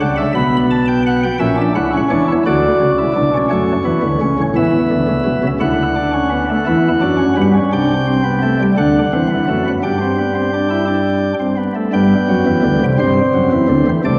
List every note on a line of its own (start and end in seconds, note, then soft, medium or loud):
0.00 0.22 C#2 medium
0.00 0.22 C#3 medium
0.00 0.20 D4 medium
0.00 0.15 F#5 loud
0.17 0.32 E5 medium
0.35 1.25 B1 medium
0.35 1.25 B2 medium
0.35 1.25 B3 medium
0.35 0.56 B5 loud
0.71 0.85 A5 loud
0.88 1.02 G5 medium
1.06 1.20 F#5 loud
1.23 1.38 G5 medium
1.39 1.61 A#1 medium
1.39 1.61 A#2 medium
1.39 1.55 C#4 medium
1.39 1.61 E5 loud
1.57 1.72 D4 medium
1.75 1.97 C#2 medium
1.75 1.97 C#3 medium
1.75 1.90 E4 medium
1.75 1.97 F#5 loud
1.93 2.08 C#4 medium
2.10 2.32 E2 medium
2.10 2.32 E3 medium
2.10 2.25 D4 medium
2.10 2.32 C#5 medium
2.28 2.43 E4 medium
2.46 2.67 D2 medium
2.46 2.68 D3 medium
2.46 2.91 F#4 medium
2.46 3.36 D5 loud
2.80 3.02 C#2 medium
2.80 3.02 C#3 medium
2.98 3.13 E4 medium
3.16 3.37 B1 medium
3.16 3.37 B2 medium
3.16 3.31 D4 medium
3.34 3.48 C#4 medium
3.50 3.72 F#2 medium
3.50 3.72 F#3 medium
3.50 3.72 A3 medium
3.50 4.41 C#5 medium
3.85 4.00 E2 medium
3.85 4.00 E3 medium
3.85 4.07 B3 medium
4.02 4.18 D2 medium
4.02 4.18 D3 medium
4.21 4.36 C#2 medium
4.21 4.36 C#3 medium
4.21 4.43 C#4 medium
4.39 4.54 A1 medium
4.39 4.54 A2 medium
4.56 4.78 E2 medium
4.56 4.78 E3 medium
4.56 5.47 B3 medium
4.56 5.47 E5 medium
4.90 5.06 D2 medium
4.90 5.06 D3 medium
5.08 5.23 C#2 medium
5.08 5.23 C#3 medium
5.25 5.41 B1 medium
5.25 5.41 B2 medium
5.43 5.59 C#2 medium
5.43 5.59 C#3 medium
5.60 6.51 D2 medium
5.60 6.51 D3 medium
5.60 5.82 E4 medium
5.60 7.41 F#5 medium
5.95 6.11 D4 medium
6.14 6.29 C#4 medium
6.30 6.46 B3 medium
6.49 6.64 A3 medium
6.67 6.88 E2 medium
6.67 6.88 E3 medium
6.67 6.88 E4 loud
7.01 7.23 F#2 medium
7.01 7.23 F#3 medium
7.01 7.16 D4 medium
7.18 7.33 C#4 medium
7.36 7.58 G2 medium
7.36 7.58 G3 medium
7.36 7.51 B3 loud
7.54 7.69 C#4 medium
7.72 8.62 C2 loud
7.72 8.62 C3 medium
7.72 7.93 D4 medium
7.72 8.62 G5 medium
8.07 8.22 C4 loud
8.24 8.39 B3 medium
8.42 8.57 A3 loud
8.60 8.74 G3 medium
8.77 8.98 D2 medium
8.77 8.99 D3 medium
8.77 8.99 D4 medium
8.77 9.67 F#5 medium
9.13 9.34 E2 medium
9.13 9.34 E3 medium
9.13 9.27 C4 medium
9.31 9.45 B3 medium
9.48 9.69 F#2 medium
9.48 9.69 F#3 medium
9.48 9.62 A3 medium
9.66 9.80 B3 medium
9.83 11.34 G2 medium
9.83 11.34 G3 medium
9.83 9.98 D4 medium
9.83 11.34 G5 medium
10.01 10.15 C4 medium
10.18 10.33 B3 medium
10.35 10.50 C4 medium
10.53 10.68 D4 medium
10.70 10.85 E4 medium
10.87 11.32 D4 medium
11.40 11.55 C4 medium
11.57 11.73 B3 medium
11.75 11.90 A3 medium
11.93 12.15 G2 medium
11.93 12.15 G3 loud
11.93 12.83 B3 medium
11.93 12.84 G5 medium
12.29 12.43 F#2 loud
12.29 12.44 F#3 medium
12.46 12.61 E2 medium
12.46 12.61 E3 medium
12.63 12.78 D2 medium
12.63 12.78 D3 medium
12.81 12.96 C2 medium
12.81 12.96 C3 medium
12.98 13.20 G2 loud
12.98 13.20 G3 loud
12.98 13.88 C4 medium
12.98 13.89 C5 medium
13.34 13.49 F#2 medium
13.34 13.49 F#3 medium
13.52 13.67 E2 medium
13.52 13.67 E3 medium
13.68 13.83 D2 loud
13.68 13.84 D3 loud
13.87 14.02 E2 medium
13.87 14.01 E3 loud
14.04 14.19 C2 loud
14.04 14.19 C3 loud
14.04 14.19 A3 medium
14.04 14.19 D5 medium